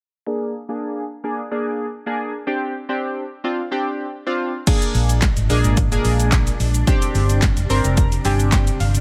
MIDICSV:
0, 0, Header, 1, 5, 480
1, 0, Start_track
1, 0, Tempo, 550459
1, 234, Time_signature, 4, 2, 24, 8
1, 7852, End_track
2, 0, Start_track
2, 0, Title_t, "Synth keys"
2, 0, Program_c, 0, 88
2, 231, Note_on_c, 0, 58, 75
2, 233, Note_on_c, 0, 62, 68
2, 236, Note_on_c, 0, 68, 86
2, 463, Note_off_c, 0, 58, 0
2, 464, Note_off_c, 0, 62, 0
2, 466, Note_off_c, 0, 68, 0
2, 598, Note_on_c, 0, 58, 75
2, 601, Note_on_c, 0, 62, 67
2, 603, Note_on_c, 0, 68, 82
2, 903, Note_off_c, 0, 58, 0
2, 904, Note_off_c, 0, 62, 0
2, 905, Note_off_c, 0, 68, 0
2, 1079, Note_on_c, 0, 58, 76
2, 1081, Note_on_c, 0, 62, 70
2, 1083, Note_on_c, 0, 68, 85
2, 1228, Note_off_c, 0, 58, 0
2, 1229, Note_off_c, 0, 62, 0
2, 1230, Note_off_c, 0, 68, 0
2, 1319, Note_on_c, 0, 58, 80
2, 1321, Note_on_c, 0, 62, 73
2, 1323, Note_on_c, 0, 68, 83
2, 1623, Note_off_c, 0, 58, 0
2, 1624, Note_off_c, 0, 62, 0
2, 1625, Note_off_c, 0, 68, 0
2, 1798, Note_on_c, 0, 58, 77
2, 1801, Note_on_c, 0, 62, 71
2, 1803, Note_on_c, 0, 68, 86
2, 2029, Note_off_c, 0, 58, 0
2, 2031, Note_off_c, 0, 62, 0
2, 2032, Note_off_c, 0, 68, 0
2, 2152, Note_on_c, 0, 60, 77
2, 2154, Note_on_c, 0, 62, 69
2, 2156, Note_on_c, 0, 67, 84
2, 2384, Note_off_c, 0, 60, 0
2, 2385, Note_off_c, 0, 62, 0
2, 2386, Note_off_c, 0, 67, 0
2, 2519, Note_on_c, 0, 60, 74
2, 2521, Note_on_c, 0, 62, 71
2, 2523, Note_on_c, 0, 67, 80
2, 2823, Note_off_c, 0, 60, 0
2, 2824, Note_off_c, 0, 62, 0
2, 2825, Note_off_c, 0, 67, 0
2, 2999, Note_on_c, 0, 60, 76
2, 3001, Note_on_c, 0, 62, 69
2, 3003, Note_on_c, 0, 65, 86
2, 3148, Note_off_c, 0, 60, 0
2, 3149, Note_off_c, 0, 62, 0
2, 3150, Note_off_c, 0, 65, 0
2, 3238, Note_on_c, 0, 60, 76
2, 3240, Note_on_c, 0, 62, 75
2, 3242, Note_on_c, 0, 67, 86
2, 3542, Note_off_c, 0, 60, 0
2, 3544, Note_off_c, 0, 62, 0
2, 3545, Note_off_c, 0, 67, 0
2, 3718, Note_on_c, 0, 60, 79
2, 3720, Note_on_c, 0, 62, 73
2, 3722, Note_on_c, 0, 65, 88
2, 3949, Note_off_c, 0, 60, 0
2, 3950, Note_off_c, 0, 62, 0
2, 3951, Note_off_c, 0, 65, 0
2, 4071, Note_on_c, 0, 58, 82
2, 4073, Note_on_c, 0, 62, 72
2, 4075, Note_on_c, 0, 68, 89
2, 4534, Note_off_c, 0, 58, 0
2, 4535, Note_off_c, 0, 62, 0
2, 4536, Note_off_c, 0, 68, 0
2, 4791, Note_on_c, 0, 58, 86
2, 4793, Note_on_c, 0, 62, 76
2, 4795, Note_on_c, 0, 68, 97
2, 5023, Note_off_c, 0, 58, 0
2, 5024, Note_off_c, 0, 62, 0
2, 5025, Note_off_c, 0, 68, 0
2, 5159, Note_on_c, 0, 58, 86
2, 5161, Note_on_c, 0, 62, 76
2, 5163, Note_on_c, 0, 68, 91
2, 5694, Note_off_c, 0, 58, 0
2, 5695, Note_off_c, 0, 62, 0
2, 5696, Note_off_c, 0, 68, 0
2, 5991, Note_on_c, 0, 60, 86
2, 5994, Note_on_c, 0, 62, 75
2, 5996, Note_on_c, 0, 67, 93
2, 6454, Note_off_c, 0, 60, 0
2, 6455, Note_off_c, 0, 62, 0
2, 6457, Note_off_c, 0, 67, 0
2, 6712, Note_on_c, 0, 60, 91
2, 6714, Note_on_c, 0, 62, 78
2, 6714, Note_on_c, 0, 84, 75
2, 6716, Note_on_c, 0, 70, 94
2, 6937, Note_off_c, 0, 84, 0
2, 6953, Note_on_c, 0, 82, 75
2, 7024, Note_off_c, 0, 60, 0
2, 7025, Note_off_c, 0, 62, 0
2, 7026, Note_off_c, 0, 70, 0
2, 7176, Note_off_c, 0, 82, 0
2, 7190, Note_on_c, 0, 60, 83
2, 7193, Note_on_c, 0, 62, 77
2, 7193, Note_on_c, 0, 80, 76
2, 7195, Note_on_c, 0, 67, 96
2, 7416, Note_off_c, 0, 80, 0
2, 7433, Note_on_c, 0, 79, 73
2, 7654, Note_off_c, 0, 60, 0
2, 7655, Note_off_c, 0, 62, 0
2, 7656, Note_off_c, 0, 67, 0
2, 7657, Note_off_c, 0, 79, 0
2, 7674, Note_on_c, 0, 77, 71
2, 7852, Note_off_c, 0, 77, 0
2, 7852, End_track
3, 0, Start_track
3, 0, Title_t, "String machine"
3, 0, Program_c, 1, 50
3, 4073, Note_on_c, 1, 46, 83
3, 4073, Note_on_c, 1, 56, 75
3, 4074, Note_on_c, 1, 62, 89
3, 5974, Note_off_c, 1, 46, 0
3, 5974, Note_off_c, 1, 56, 0
3, 5993, Note_on_c, 1, 48, 81
3, 5993, Note_on_c, 1, 55, 71
3, 7852, Note_off_c, 1, 48, 0
3, 7852, Note_off_c, 1, 55, 0
3, 7852, Note_off_c, 1, 62, 0
3, 7852, End_track
4, 0, Start_track
4, 0, Title_t, "Fingered electric bass"
4, 0, Program_c, 2, 33
4, 4313, Note_on_c, 2, 34, 85
4, 4609, Note_off_c, 2, 34, 0
4, 4680, Note_on_c, 2, 32, 84
4, 4771, Note_off_c, 2, 32, 0
4, 4793, Note_on_c, 2, 34, 88
4, 4896, Note_off_c, 2, 34, 0
4, 4921, Note_on_c, 2, 32, 83
4, 5205, Note_off_c, 2, 32, 0
4, 5273, Note_on_c, 2, 34, 99
4, 5660, Note_off_c, 2, 34, 0
4, 5754, Note_on_c, 2, 34, 94
4, 5947, Note_off_c, 2, 34, 0
4, 6234, Note_on_c, 2, 31, 88
4, 6529, Note_off_c, 2, 31, 0
4, 6600, Note_on_c, 2, 29, 87
4, 6691, Note_off_c, 2, 29, 0
4, 6713, Note_on_c, 2, 31, 88
4, 6816, Note_off_c, 2, 31, 0
4, 6840, Note_on_c, 2, 29, 83
4, 7124, Note_off_c, 2, 29, 0
4, 7193, Note_on_c, 2, 31, 102
4, 7580, Note_off_c, 2, 31, 0
4, 7674, Note_on_c, 2, 31, 94
4, 7852, Note_off_c, 2, 31, 0
4, 7852, End_track
5, 0, Start_track
5, 0, Title_t, "Drums"
5, 4073, Note_on_c, 9, 36, 120
5, 4073, Note_on_c, 9, 49, 100
5, 4074, Note_on_c, 9, 42, 68
5, 4074, Note_on_c, 9, 82, 65
5, 4161, Note_off_c, 9, 36, 0
5, 4161, Note_off_c, 9, 42, 0
5, 4161, Note_off_c, 9, 49, 0
5, 4161, Note_off_c, 9, 82, 0
5, 4202, Note_on_c, 9, 42, 61
5, 4202, Note_on_c, 9, 82, 58
5, 4289, Note_off_c, 9, 42, 0
5, 4289, Note_off_c, 9, 82, 0
5, 4314, Note_on_c, 9, 46, 62
5, 4314, Note_on_c, 9, 82, 47
5, 4401, Note_off_c, 9, 46, 0
5, 4401, Note_off_c, 9, 82, 0
5, 4441, Note_on_c, 9, 42, 53
5, 4441, Note_on_c, 9, 82, 71
5, 4528, Note_off_c, 9, 42, 0
5, 4528, Note_off_c, 9, 82, 0
5, 4551, Note_on_c, 9, 38, 96
5, 4553, Note_on_c, 9, 39, 124
5, 4554, Note_on_c, 9, 42, 72
5, 4554, Note_on_c, 9, 82, 74
5, 4555, Note_on_c, 9, 36, 117
5, 4639, Note_off_c, 9, 38, 0
5, 4641, Note_off_c, 9, 39, 0
5, 4641, Note_off_c, 9, 42, 0
5, 4641, Note_off_c, 9, 82, 0
5, 4642, Note_off_c, 9, 36, 0
5, 4680, Note_on_c, 9, 42, 51
5, 4680, Note_on_c, 9, 82, 54
5, 4767, Note_off_c, 9, 42, 0
5, 4767, Note_off_c, 9, 82, 0
5, 4795, Note_on_c, 9, 46, 76
5, 4795, Note_on_c, 9, 82, 57
5, 4882, Note_off_c, 9, 46, 0
5, 4882, Note_off_c, 9, 82, 0
5, 4921, Note_on_c, 9, 42, 53
5, 4921, Note_on_c, 9, 82, 78
5, 5008, Note_off_c, 9, 42, 0
5, 5008, Note_off_c, 9, 82, 0
5, 5032, Note_on_c, 9, 42, 79
5, 5032, Note_on_c, 9, 82, 80
5, 5034, Note_on_c, 9, 36, 127
5, 5119, Note_off_c, 9, 42, 0
5, 5119, Note_off_c, 9, 82, 0
5, 5121, Note_off_c, 9, 36, 0
5, 5162, Note_on_c, 9, 42, 55
5, 5162, Note_on_c, 9, 82, 53
5, 5250, Note_off_c, 9, 42, 0
5, 5250, Note_off_c, 9, 82, 0
5, 5272, Note_on_c, 9, 46, 82
5, 5272, Note_on_c, 9, 82, 58
5, 5360, Note_off_c, 9, 46, 0
5, 5360, Note_off_c, 9, 82, 0
5, 5403, Note_on_c, 9, 42, 59
5, 5403, Note_on_c, 9, 82, 80
5, 5490, Note_off_c, 9, 42, 0
5, 5490, Note_off_c, 9, 82, 0
5, 5512, Note_on_c, 9, 36, 123
5, 5512, Note_on_c, 9, 38, 97
5, 5512, Note_on_c, 9, 42, 76
5, 5512, Note_on_c, 9, 82, 77
5, 5514, Note_on_c, 9, 39, 117
5, 5599, Note_off_c, 9, 36, 0
5, 5599, Note_off_c, 9, 38, 0
5, 5600, Note_off_c, 9, 42, 0
5, 5600, Note_off_c, 9, 82, 0
5, 5601, Note_off_c, 9, 39, 0
5, 5641, Note_on_c, 9, 42, 57
5, 5641, Note_on_c, 9, 82, 54
5, 5729, Note_off_c, 9, 42, 0
5, 5729, Note_off_c, 9, 82, 0
5, 5756, Note_on_c, 9, 46, 63
5, 5756, Note_on_c, 9, 82, 47
5, 5843, Note_off_c, 9, 46, 0
5, 5843, Note_off_c, 9, 82, 0
5, 5881, Note_on_c, 9, 42, 53
5, 5881, Note_on_c, 9, 82, 77
5, 5968, Note_off_c, 9, 42, 0
5, 5968, Note_off_c, 9, 82, 0
5, 5993, Note_on_c, 9, 36, 121
5, 5994, Note_on_c, 9, 42, 67
5, 5994, Note_on_c, 9, 82, 66
5, 6081, Note_off_c, 9, 36, 0
5, 6081, Note_off_c, 9, 42, 0
5, 6081, Note_off_c, 9, 82, 0
5, 6122, Note_on_c, 9, 42, 61
5, 6122, Note_on_c, 9, 82, 59
5, 6209, Note_off_c, 9, 42, 0
5, 6209, Note_off_c, 9, 82, 0
5, 6234, Note_on_c, 9, 46, 62
5, 6234, Note_on_c, 9, 82, 46
5, 6322, Note_off_c, 9, 46, 0
5, 6322, Note_off_c, 9, 82, 0
5, 6361, Note_on_c, 9, 42, 53
5, 6361, Note_on_c, 9, 82, 73
5, 6448, Note_off_c, 9, 42, 0
5, 6448, Note_off_c, 9, 82, 0
5, 6471, Note_on_c, 9, 38, 97
5, 6473, Note_on_c, 9, 39, 121
5, 6474, Note_on_c, 9, 42, 73
5, 6474, Note_on_c, 9, 82, 72
5, 6475, Note_on_c, 9, 36, 117
5, 6558, Note_off_c, 9, 38, 0
5, 6560, Note_off_c, 9, 39, 0
5, 6561, Note_off_c, 9, 42, 0
5, 6561, Note_off_c, 9, 82, 0
5, 6562, Note_off_c, 9, 36, 0
5, 6599, Note_on_c, 9, 42, 54
5, 6599, Note_on_c, 9, 82, 53
5, 6687, Note_off_c, 9, 42, 0
5, 6687, Note_off_c, 9, 82, 0
5, 6715, Note_on_c, 9, 46, 75
5, 6715, Note_on_c, 9, 82, 54
5, 6802, Note_off_c, 9, 46, 0
5, 6802, Note_off_c, 9, 82, 0
5, 6841, Note_on_c, 9, 42, 58
5, 6841, Note_on_c, 9, 82, 76
5, 6928, Note_off_c, 9, 42, 0
5, 6928, Note_off_c, 9, 82, 0
5, 6951, Note_on_c, 9, 42, 82
5, 6951, Note_on_c, 9, 82, 76
5, 6953, Note_on_c, 9, 36, 127
5, 7038, Note_off_c, 9, 42, 0
5, 7038, Note_off_c, 9, 82, 0
5, 7040, Note_off_c, 9, 36, 0
5, 7081, Note_on_c, 9, 42, 51
5, 7081, Note_on_c, 9, 82, 51
5, 7169, Note_off_c, 9, 42, 0
5, 7169, Note_off_c, 9, 82, 0
5, 7191, Note_on_c, 9, 46, 83
5, 7191, Note_on_c, 9, 82, 64
5, 7279, Note_off_c, 9, 46, 0
5, 7279, Note_off_c, 9, 82, 0
5, 7322, Note_on_c, 9, 42, 55
5, 7322, Note_on_c, 9, 82, 78
5, 7409, Note_off_c, 9, 42, 0
5, 7409, Note_off_c, 9, 82, 0
5, 7432, Note_on_c, 9, 36, 118
5, 7432, Note_on_c, 9, 38, 90
5, 7432, Note_on_c, 9, 42, 77
5, 7432, Note_on_c, 9, 82, 74
5, 7433, Note_on_c, 9, 39, 119
5, 7519, Note_off_c, 9, 36, 0
5, 7519, Note_off_c, 9, 38, 0
5, 7519, Note_off_c, 9, 42, 0
5, 7519, Note_off_c, 9, 82, 0
5, 7520, Note_off_c, 9, 39, 0
5, 7562, Note_on_c, 9, 42, 54
5, 7562, Note_on_c, 9, 82, 58
5, 7649, Note_off_c, 9, 42, 0
5, 7649, Note_off_c, 9, 82, 0
5, 7676, Note_on_c, 9, 46, 63
5, 7676, Note_on_c, 9, 82, 46
5, 7763, Note_off_c, 9, 46, 0
5, 7763, Note_off_c, 9, 82, 0
5, 7801, Note_on_c, 9, 42, 52
5, 7801, Note_on_c, 9, 82, 76
5, 7852, Note_off_c, 9, 42, 0
5, 7852, Note_off_c, 9, 82, 0
5, 7852, End_track
0, 0, End_of_file